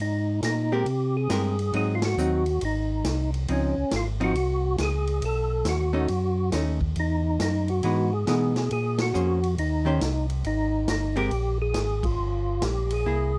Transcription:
0.00 G#2 D#4, ride
0.42 A#2 D#4, snare, hi-hat pedal, ride
0.72 G#3 C4 G4 A#4
0.86 C3, ride
1.17 G#4
1.29 G2 G#3 C4 G4 A#4, snare, hi-hat pedal, ride
1.59 ride
1.73 G#2 F#3 C4 D#4 G#4, ride
1.95 F4
2.02 F#4, snare, ride
2.17 D#2 F#3 C4 D#4, hi-hat pedal
2.46 ride
2.61 G#1 D#4, ride
3.04 C2, snare, hi-hat pedal, ride
3.34 ride
3.48 C#2 F3 C4 C#4 D#4, ride
3.78 C#2
3.91 G#1, snare, hi-hat pedal, ride
3.96 F4
4.20 F3 C4 D#4 F#4, ride
4.34 C2, ride
4.78 C#2 G#4, snare, hi-hat pedal, ride
5.07 ride
5.22 B1 A4, ride
5.65 D#2, snare, hi-hat pedal, ride
5.69 F#4
5.93 A3 C#4 D#4
6.08 F#2, ride
6.52 D#2 A3 C#4 D#4, snare, hi-hat pedal, ride
6.81 kick
6.96 E2 D#4, ride
7.40 F#2 D#4, snare, hi-hat pedal, ride
7.68 F#4, ride
7.83 G#2 E3 G#3 B3 D#4, ride
8.13 G#4
8.27 B2 E3 G#3 B3 D#4, snare, hi-hat pedal, ride
8.56 snare, ride
8.71 A#2 G#4, ride
8.98 F#4, snare, ride
9.14 F2 A#3 C#4 G#4 C5, hi-hat pedal
9.43 ride
9.58 D#2 D#4, ride
9.85 D#3 C#4 G4 C5
10.01 C2, snare, hi-hat pedal, ride
10.30 ride
10.44 G#1 D#4, ride
10.88 G1 D#4, snare, hi-hat pedal, ride
11.16 G#3 C4 G4 A#4, ride
11.31 A#1, ride
11.62 G#4
11.74 G#1, snare, hi-hat pedal, ride
12.03 F4, kick, ride
12.18 G1
12.62 A#1 G4, snare, hi-hat pedal, ride
12.90 G#4, ride
13.05 C2 A#3 E4 G#4

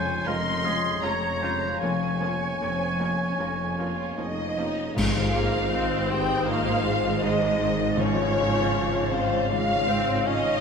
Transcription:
Already playing: F1 F2 C#3 F3 G#3 C#4 F4 C5 C#5 G#5
0.25 F1 F2 F3 G#3 C#4 F4 A#4 D#5 C6
0.64 F3 G#3 C#4 F4 G#4
1.02 F1 F2 F3 G#3 C#4 F4 C#5 A#5
1.41 F3 G#3 C#4 F4 C5
1.64 F3
1.68 A#3
1.77 F1 F2 C#4 F4 C#5
1.81 F1 F2 F3 A#3 G#5
2.21 F3 A#3 C#4 F4
2.60 F1 F2 F3 A#3 C4
2.99 F3 A#3 C#4 F4
3.38 F1 F2 F3 A#3
3.78 F3 A#3 C#4 F4
4.17 F1 F2 F3 A#3 D#4 D#5
4.57 F3 A#3 C#4 D#4 F4
4.96 G#1 G#2 G#3 F4 C5 F5, concert bass drum, crash
5.16 D#3 C5
5.35 A#3 C4 G#4
5.54 D#4 C5
5.72 C4 D#4 D#5
5.91 C5
6.09 G#3 G4 D#5 G5
6.29 C5 D#6
6.47 D#3 A#3 F4 D#5 F5
6.66 C5 D#6
6.84 G#3 G#4 D#5
7.04 C5
7.23 D#4 D#5
7.41 D#4 C5
7.61 G#3 C4
7.79 D#3 C5
7.97 G#2 F3 C#4 C#5 F5
8.16 G#3 C#5
8.35 C#3 F4
8.53 F4 C#5
8.73 F4
8.92 F4 C#5
9.11 C#3 C4 C5 F5
9.31 C#5 C#6
9.50 G#3 F4 F5
9.69 C#5 C#6
9.88 C4 F4 F5
10.07 C#5
10.26 C#4 D#4 F4 D#5
10.45 C#5

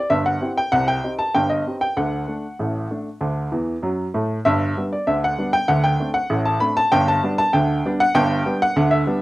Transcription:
0.10 G1 G2 E5
0.26 F#5
0.41 C4 E4 G4
0.58 G5
0.72 C2 C3 F#5
0.88 G5
1.04 C4 D#4 G4
1.19 A5
1.35 G1 G2 G5
1.50 D#5
1.66 C4 D#4 G4
1.81 G5
1.97 D2 D3 F#5
2.28 A3 D4
2.59 A1 A2
2.91 A3 D4
3.21 D2 D3
3.52 E2 E3
3.82 F#2 F#3
4.14 A2 A3
4.45 G1 G2 E5
4.77 G3 B3 D4
4.93 D5
5.07 D2 D3 E5
5.24 F#5
5.38 G3 B3 D4
5.53 G5
5.68 D2 D3 F#5
5.84 G5
6.00 A3 C4 D4
6.14 F#5
6.30 A1 A2
6.45 A5
6.60 A3 C4 D4 B5
6.77 A5
6.92 G1 G2 G5
7.08 A5
7.24 G3 B3 D4
7.38 A5
7.53 D2 D3 G5
7.86 G3 B3 D4
8.00 F#5
8.15 G1 G2 G5
8.46 G3 B3 D4
8.62 F#5
8.76 D2 D3
8.91 E5
9.07 G3 B3 D4

